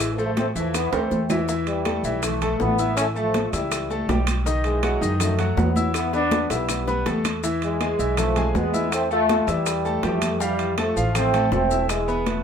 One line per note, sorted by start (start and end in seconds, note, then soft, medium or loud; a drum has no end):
0.00 0.50 A1 medium
0.00 0.12 E3 medium
0.00 0.13 E3 medium
0.00 0.12 G#3 medium
0.00 0.12 E4 medium
0.00 0.12 E5 medium
0.00 high bongo medium
0.00 high conga soft
0.00 high timbale medium
0.00 claves medium
0.00 maracas medium
0.13 0.25 F3 medium
0.13 0.24 A3 medium
0.18 0.49 A3 medium
0.18 0.49 A4 medium
0.18 0.49 C5 medium
0.18 high bongo soft
0.18 high conga soft
0.18 maracas soft
0.26 0.32 F3 medium
0.26 0.31 A3 medium
0.37 0.47 A3 medium
0.37 0.47 C4 loud
0.37 high bongo medium
0.37 high conga loud
0.37 high timbale medium
0.37 low timbale medium
0.37 maracas soft
0.55 0.90 E2 medium
0.55 0.86 E3 medium
0.55 0.74 F3 medium
0.55 0.73 A3 medium
0.55 0.86 E4 medium
0.55 0.86 E5 medium
0.55 high bongo soft
0.55 maracas medium
0.74 0.93 E3 medium
0.74 0.93 B3 loud
0.74 high bongo loud
0.74 high conga soft
0.74 high timbale medium
0.74 claves medium
0.74 maracas loud
0.93 1.10 D2 medium
0.93 1.23 A3 medium
0.93 1.31 A3 medium
0.93 1.30 C4 loud
0.93 1.23 A4 medium
0.93 1.24 C5 medium
0.93 high bongo medium
0.93 high conga soft
0.93 high timbale loud
0.93 maracas soft
1.11 1.98 E2 medium
1.11 low bongo medium
1.11 high conga medium
1.11 maracas soft
1.30 1.45 E3 medium
1.30 1.45 E4 medium
1.30 1.45 E5 medium
1.30 low bongo medium
1.30 high conga medium
1.30 low timbale medium
1.30 claves medium
1.30 maracas medium
1.48 1.79 E3 medium
1.48 1.79 E4 medium
1.48 1.79 E5 medium
1.48 high bongo medium
1.48 high conga soft
1.48 maracas medium
1.67 2.20 E3 medium
1.67 2.19 G3 medium
1.67 high conga soft
1.67 high timbale medium
1.67 maracas soft
1.85 2.01 A3 medium
1.85 2.01 A4 medium
1.85 2.01 A5 medium
1.85 high bongo medium
1.85 high conga medium
1.85 high timbale medium
1.85 claves medium
1.85 maracas soft
2.04 2.56 B1 medium
2.04 2.35 E3 medium
2.04 2.35 E4 medium
2.04 2.35 E5 medium
2.04 high conga soft
2.04 maracas medium
2.23 2.58 E3 medium
2.23 2.58 A3 loud
2.23 high bongo medium
2.23 high conga soft
2.23 low conga medium
2.23 high timbale medium
2.23 claves medium
2.23 maracas medium
2.42 2.72 A3 medium
2.42 2.72 A4 medium
2.42 2.72 A5 medium
2.42 high conga soft
2.42 low conga medium
2.42 high timbale medium
2.42 maracas soft
2.60 3.47 A1 medium
2.60 2.95 E3 medium
2.60 2.94 B3 loud
2.60 high bongo medium
2.60 low bongo medium
2.60 high conga medium
2.60 maracas soft
2.79 3.09 E4 medium
2.79 3.09 E5 medium
2.79 3.10 E6 medium
2.79 high conga medium
2.79 maracas medium
2.97 3.07 A3 medium
2.97 3.05 C#4 loud
2.97 high bongo medium
2.97 high conga soft
2.97 high timbale medium
2.97 claves medium
2.97 maracas medium
3.15 3.51 F3 medium
3.15 3.50 A3 loud
3.15 3.46 A3 medium
3.15 3.46 A4 medium
3.15 3.47 A5 medium
3.15 high conga soft
3.15 maracas soft
3.34 high bongo medium
3.34 high conga loud
3.34 high timbale medium
3.34 maracas soft
3.53 4.05 C#2 loud
3.53 4.24 E3 medium
3.53 4.23 G3 medium
3.53 3.84 E4 medium
3.53 3.84 E5 medium
3.53 3.84 E6 medium
3.53 high bongo soft
3.53 high timbale medium
3.53 maracas medium
3.72 high bongo medium
3.72 high conga soft
3.72 high timbale medium
3.72 claves medium
3.72 maracas medium
3.90 4.05 A3 medium
3.90 4.06 A4 medium
3.90 4.06 A5 medium
3.90 high bongo soft
3.90 high conga soft
3.90 maracas soft
4.08 4.96 B1 medium
4.08 4.39 G3 medium
4.08 4.39 G4 medium
4.08 4.39 G5 medium
4.08 high bongo medium
4.08 low bongo medium
4.08 high conga medium
4.08 high timbale medium
4.08 low timbale medium
4.08 maracas soft
4.27 high bongo soft
4.27 high conga medium
4.27 high timbale loud
4.27 claves medium
4.27 maracas medium
4.46 4.76 D#3 medium
4.46 4.76 D#4 medium
4.46 4.77 D#5 medium
4.46 high bongo medium
4.46 high conga soft
4.46 maracas medium
4.64 5.17 E3 medium
4.64 5.17 G#3 loud
4.64 high conga soft
4.64 high timbale medium
4.64 maracas soft
4.83 4.98 F#3 medium
4.83 4.98 F#4 medium
4.83 4.99 F#5 medium
4.83 high bongo medium
4.83 high conga medium
4.83 high timbale medium
4.83 claves medium
4.83 maracas soft
5.01 5.53 F#2 medium
5.01 5.32 D#3 medium
5.01 5.32 D#4 medium
5.01 5.32 D#5 medium
5.01 high conga soft
5.01 maracas medium
5.20 5.58 F#3 medium
5.20 5.58 A3 loud
5.20 high bongo medium
5.20 high conga soft
5.20 low conga medium
5.20 high timbale medium
5.20 claves medium
5.20 maracas loud
5.39 5.69 F#3 medium
5.39 5.69 F#4 medium
5.39 5.70 F#5 medium
5.39 high conga soft
5.39 low conga medium
5.39 high timbale medium
5.39 maracas soft
5.57 6.44 E2 medium
5.57 5.93 F#3 medium
5.57 5.93 B3 loud
5.57 high bongo medium
5.57 low bongo medium
5.57 high conga medium
5.57 low timbale medium
5.57 maracas soft
5.76 6.06 E4 medium
5.76 6.07 E5 medium
5.76 6.07 E6 medium
5.76 high conga medium
5.76 maracas medium
5.94 6.13 E3 medium
5.94 6.13 B3 loud
5.94 high bongo medium
5.94 high conga soft
5.94 high timbale medium
5.94 claves medium
5.94 maracas medium
6.13 6.44 B3 medium
6.13 6.49 B3 loud
6.13 6.49 D4 loud
6.13 6.44 B4 medium
6.13 6.44 B5 medium
6.13 high bongo medium
6.13 high conga soft
6.13 maracas soft
6.31 high bongo loud
6.31 high conga loud
6.31 high timbale medium
6.31 maracas soft
6.50 7.02 B1 medium
6.50 7.26 G3 medium
6.50 7.25 B3 medium
6.50 6.81 E4 medium
6.50 6.81 E5 medium
6.50 6.81 E6 medium
6.50 high bongo medium
6.50 high conga soft
6.50 high timbale medium
6.50 maracas medium
6.69 low bongo medium
6.69 high conga soft
6.69 high timbale medium
6.69 claves medium
6.69 maracas medium
6.87 7.03 B3 medium
6.87 7.03 B4 medium
6.87 7.03 B5 medium
6.87 low bongo loud
6.87 high conga soft
6.87 maracas soft
7.06 7.93 E2 medium
7.06 7.36 A3 medium
7.06 7.37 A4 medium
7.06 7.37 A5 medium
7.06 low bongo medium
7.06 high conga medium
7.06 high timbale medium
7.06 maracas soft
7.25 low bongo medium
7.25 high conga medium
7.25 high timbale loud
7.25 claves medium
7.25 maracas medium
7.43 7.74 E3 medium
7.43 7.74 E4 medium
7.43 7.74 E5 medium
7.43 high bongo medium
7.43 high conga soft
7.43 maracas medium
7.62 8.15 E3 medium
7.62 8.15 G#3 loud
7.62 high conga soft
7.62 high timbale medium
7.62 maracas soft
7.80 7.96 G#3 medium
7.80 7.96 G#4 medium
7.80 7.96 G#5 medium
7.80 high bongo medium
7.80 high conga medium
7.80 high timbale medium
7.80 claves medium
7.80 maracas soft
7.99 8.51 B1 medium
7.99 8.30 E3 medium
7.99 8.30 E4 medium
7.99 8.30 E5 medium
7.99 high conga soft
7.99 maracas medium
8.17 8.53 F3 medium
8.17 8.53 A3 loud
8.17 high bongo medium
8.17 high conga soft
8.17 low conga medium
8.17 high timbale loud
8.17 claves medium
8.17 maracas medium
8.36 8.67 G#3 medium
8.36 8.67 G#4 medium
8.36 8.67 G#5 medium
8.36 high conga soft
8.36 low conga medium
8.36 high timbale medium
8.36 maracas soft
8.55 9.42 E2 medium
8.55 8.93 G#3 medium
8.55 8.93 B3 loud
8.55 high bongo medium
8.55 low bongo medium
8.55 high conga medium
8.55 low timbale medium
8.55 maracas soft
8.73 9.04 E4 medium
8.73 9.04 E5 medium
8.73 9.04 E6 medium
8.73 high conga medium
8.73 maracas medium
8.92 9.10 A3 medium
8.92 9.10 C4 loud
8.92 high bongo medium
8.92 high timbale medium
8.92 claves medium
8.92 maracas medium
9.11 9.41 A3 medium
9.11 9.46 A3 loud
9.11 9.46 F4 medium
9.11 9.41 A4 medium
9.11 9.42 A5 medium
9.11 high conga soft
9.11 maracas soft
9.29 high bongo medium
9.29 high conga loud
9.29 high timbale medium
9.29 maracas soft
9.47 9.99 E2 medium
9.47 10.04 E3 medium
9.47 10.04 G3 loud
9.47 9.78 E4 medium
9.47 9.78 E5 medium
9.47 9.79 E6 medium
9.47 high bongo soft
9.47 high timbale medium
9.47 maracas medium
9.66 high bongo medium
9.66 high conga soft
9.66 high timbale medium
9.66 claves medium
9.66 maracas loud
9.85 10.00 A3 medium
9.85 10.00 A4 medium
9.85 10.01 A5 medium
9.85 high bongo soft
9.85 high conga soft
9.85 maracas soft
10.03 10.91 F2 medium
10.03 10.39 E3 medium
10.03 10.34 G3 medium
10.03 10.39 A3 loud
10.03 10.35 G4 medium
10.03 10.35 G5 medium
10.03 high bongo medium
10.03 low bongo medium
10.03 high conga medium
10.03 high timbale medium
10.03 low timbale medium
10.03 maracas soft
10.22 high bongo soft
10.22 high conga medium
10.22 high timbale loud
10.22 claves medium
10.22 maracas medium
10.40 10.79 E3 medium
10.40 10.71 G3 medium
10.40 10.78 G3 loud
10.40 10.71 G4 medium
10.40 10.72 F5 medium
10.40 high bongo medium
10.40 maracas medium
10.59 high conga soft
10.59 high timbale medium
10.59 maracas soft
10.78 11.13 F3 medium
10.78 10.93 A3 medium
10.78 11.13 A3 medium
10.78 10.93 A4 medium
10.78 10.94 A5 medium
10.78 high bongo medium
10.78 high conga medium
10.78 high timbale medium
10.78 claves medium
10.78 maracas soft
10.96 11.48 A1 medium
10.96 11.27 F3 medium
10.96 11.27 F4 medium
10.96 11.27 F5 medium
10.96 high conga soft
10.96 maracas medium
11.15 11.50 A3 medium
11.15 11.50 C4 loud
11.15 high bongo medium
11.15 high conga soft
11.15 low conga medium
11.15 high timbale loud
11.15 claves medium
11.15 maracas medium
11.33 11.64 A3 medium
11.33 11.64 A4 medium
11.33 11.65 A5 medium
11.33 high conga soft
11.33 low conga medium
11.33 high timbale medium
11.33 maracas soft
11.52 12.39 E1 medium
11.52 11.88 A3 medium
11.52 11.87 C4 loud
11.52 high bongo medium
11.52 low bongo medium
11.52 high conga medium
11.52 low timbale medium
11.52 maracas soft
11.71 12.01 E4 medium
11.71 12.01 E5 medium
11.71 12.02 E6 medium
11.71 high conga medium
11.71 maracas medium
11.89 12.25 E3 medium
11.89 12.24 G#3 loud
11.89 high bongo medium
11.89 high conga soft
11.89 high timbale medium
11.89 claves medium
11.89 maracas medium
12.08 12.38 B3 medium
12.08 12.38 B4 medium
12.08 12.39 B5 medium
12.08 high conga soft
12.08 maracas soft
12.26 12.43 E3 medium
12.26 12.43 A3 medium
12.26 high bongo medium
12.26 high conga medium
12.26 high timbale medium
12.26 maracas soft